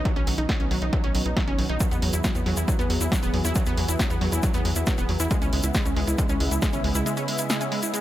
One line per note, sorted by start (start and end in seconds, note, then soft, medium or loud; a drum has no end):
0.00 1.77 D#3 medium
0.00 8.01 B3 medium
0.05 0.11 F#3 loud
0.05 1.79 D#4 medium
0.05 kick loud
0.05 closed hi-hat medium
0.16 0.24 B1 medium
0.16 0.20 C#4 loud
0.16 closed hi-hat soft
0.27 0.35 B1 loud
0.27 0.33 F#3 medium
0.27 open hi-hat loud
0.38 0.46 B1 medium
0.38 0.44 D#4 medium
0.38 closed hi-hat medium
0.49 0.53 F#3 loud
0.49 kick loud
0.49 snare loud
0.49 closed hi-hat medium
0.60 0.68 B1 medium
0.60 0.66 C#4 medium
0.60 closed hi-hat soft
0.71 0.79 B1 loud
0.71 0.75 F#3 loud
0.71 open hi-hat medium
0.82 0.90 B1 loud
0.82 0.91 D#4 medium
0.82 closed hi-hat soft
0.93 0.99 F#3 loud
0.93 kick loud
0.93 closed hi-hat medium
1.04 1.12 B1 medium
1.04 1.07 C#4 loud
1.04 closed hi-hat soft
1.15 1.23 B1 loud
1.15 1.21 F#3 medium
1.15 open hi-hat loud
1.26 1.34 B1 medium
1.26 1.32 D#4 medium
1.26 closed hi-hat soft
1.37 1.40 F#3 loud
1.37 kick loud
1.37 snare loud
1.37 closed hi-hat medium
1.48 1.56 F#1 medium
1.48 1.54 C#4 loud
1.48 closed hi-hat soft
1.59 1.67 B1 medium
1.59 1.65 F#3 medium
1.59 open hi-hat loud
1.69 1.78 B1 medium
1.69 1.75 D#4 loud
1.69 closed hi-hat soft
1.80 5.27 E3 medium
1.80 1.86 F#3 loud
1.80 5.27 F#4 medium
1.80 5.27 G#4 medium
1.80 kick loud
1.80 closed hi-hat medium
1.80 shaker medium
1.91 2.00 E2 medium
1.91 1.95 B3 medium
1.91 closed hi-hat soft
1.91 shaker soft
2.02 2.11 E2 loud
2.02 2.08 F#3 medium
2.02 open hi-hat loud
2.13 2.22 E2 medium
2.13 2.19 E4 medium
2.13 closed hi-hat medium
2.13 shaker medium
2.24 2.28 F#3 loud
2.24 kick loud
2.24 snare loud
2.24 closed hi-hat medium
2.24 shaker medium
2.35 2.43 E2 medium
2.35 2.41 B3 medium
2.35 closed hi-hat soft
2.35 shaker soft
2.46 2.54 E2 loud
2.46 2.50 F#3 loud
2.46 open hi-hat medium
2.57 2.65 E2 medium
2.57 2.66 E4 medium
2.57 closed hi-hat soft
2.57 shaker medium
2.68 2.74 F#3 loud
2.68 kick loud
2.68 closed hi-hat medium
2.68 shaker medium
2.79 2.87 E2 medium
2.79 2.83 B3 loud
2.79 closed hi-hat soft
2.79 shaker soft
2.90 2.98 E2 loud
2.90 2.96 F#3 medium
2.90 open hi-hat loud
3.01 3.09 E2 loud
3.01 3.07 E4 medium
3.01 closed hi-hat medium
3.01 shaker medium
3.12 3.15 F#3 loud
3.12 kick loud
3.12 snare loud
3.12 closed hi-hat medium
3.12 shaker medium
3.23 3.31 E1 medium
3.23 3.29 B3 loud
3.23 closed hi-hat soft
3.23 shaker soft
3.34 3.42 E2 loud
3.34 3.40 F#3 medium
3.34 open hi-hat medium
3.45 3.53 E2 medium
3.45 3.51 E4 loud
3.45 shaker medium
3.55 3.62 F#3 loud
3.55 kick loud
3.55 closed hi-hat medium
3.55 shaker medium
3.66 3.75 E2 medium
3.66 3.70 B3 loud
3.66 closed hi-hat medium
3.66 shaker soft
3.77 3.86 E2 loud
3.77 3.84 F#3 medium
3.77 open hi-hat loud
3.88 3.97 E2 medium
3.88 3.94 E4 medium
3.88 closed hi-hat medium
3.88 shaker medium
3.99 4.03 F#3 medium
3.99 kick loud
3.99 snare loud
3.99 closed hi-hat medium
3.99 shaker medium
4.10 4.19 E2 medium
4.10 4.16 B3 medium
4.10 closed hi-hat soft
4.10 shaker soft
4.21 4.30 E2 loud
4.21 4.25 F#3 loud
4.21 open hi-hat medium
4.32 4.41 E2 medium
4.32 4.41 E4 medium
4.32 closed hi-hat soft
4.32 shaker medium
4.43 4.49 F#3 loud
4.43 kick loud
4.43 closed hi-hat medium
4.43 shaker medium
4.54 4.62 E2 medium
4.54 4.58 B3 loud
4.54 closed hi-hat medium
4.54 shaker soft
4.65 4.73 E2 loud
4.65 4.71 F#3 medium
4.65 open hi-hat loud
4.75 4.84 E2 loud
4.75 4.82 E4 medium
4.75 closed hi-hat soft
4.75 shaker medium
4.86 4.91 F#3 loud
4.86 kick loud
4.86 snare loud
4.86 closed hi-hat medium
4.86 shaker medium
4.98 5.06 E1 medium
4.98 5.04 B3 loud
4.98 closed hi-hat soft
4.98 shaker soft
5.09 5.17 E2 medium
5.09 5.15 F#3 medium
5.09 open hi-hat medium
5.20 5.28 E2 medium
5.20 5.26 E4 loud
5.20 closed hi-hat soft
5.20 shaker medium
5.31 8.01 C#3 medium
5.31 8.01 G#3 medium
5.31 5.37 G#3 loud
5.31 8.01 E4 medium
5.31 kick loud
5.31 closed hi-hat medium
5.31 shaker medium
5.42 5.50 C#2 medium
5.42 5.45 C#4 loud
5.42 closed hi-hat medium
5.42 shaker soft
5.53 5.61 C#2 loud
5.53 5.59 G#3 medium
5.53 open hi-hat loud
5.63 5.72 C#2 medium
5.63 5.70 E4 medium
5.63 closed hi-hat medium
5.63 shaker medium
5.74 5.78 G#3 loud
5.74 kick loud
5.74 snare loud
5.74 closed hi-hat medium
5.74 shaker medium
5.86 5.94 C#2 medium
5.86 5.92 C#4 medium
5.86 closed hi-hat medium
5.86 shaker soft
5.96 6.05 C#2 loud
5.96 6.00 G#3 loud
5.96 open hi-hat medium
6.07 6.16 C#2 medium
6.07 6.16 E4 medium
6.07 closed hi-hat medium
6.07 shaker medium
6.18 6.24 G#3 loud
6.18 kick loud
6.18 closed hi-hat medium
6.18 shaker medium
6.29 6.38 C#2 medium
6.29 6.33 C#4 loud
6.29 closed hi-hat medium
6.29 shaker soft
6.40 6.49 C#2 loud
6.40 6.46 G#3 medium
6.40 open hi-hat loud
6.51 6.59 C#2 loud
6.51 6.57 E4 medium
6.51 closed hi-hat medium
6.51 shaker medium
6.62 6.66 G#3 loud
6.62 kick loud
6.62 snare loud
6.62 closed hi-hat medium
6.62 shaker medium
6.73 6.81 G#1 medium
6.73 6.79 C#4 loud
6.73 closed hi-hat soft
6.73 shaker soft
6.84 6.92 C#2 loud
6.84 6.90 G#3 medium
6.84 open hi-hat medium
6.95 7.03 C#2 medium
6.95 7.01 E4 loud
6.95 closed hi-hat soft
6.95 shaker medium
7.06 7.12 G#3 loud
7.06 closed hi-hat medium
7.06 shaker medium
7.17 7.21 C#4 medium
7.17 closed hi-hat medium
7.17 shaker soft
7.28 7.34 G#3 medium
7.28 open hi-hat loud
7.38 7.45 E4 medium
7.38 closed hi-hat medium
7.38 shaker medium
7.50 7.53 G#3 loud
7.50 snare loud
7.50 closed hi-hat medium
7.50 shaker medium
7.61 7.67 C#4 medium
7.61 closed hi-hat medium
7.61 shaker soft
7.72 7.75 G#3 loud
7.72 open hi-hat medium
7.83 7.92 E4 medium
7.83 closed hi-hat medium
7.83 shaker medium
7.94 8.00 G#3 loud
7.94 closed hi-hat medium
7.94 shaker medium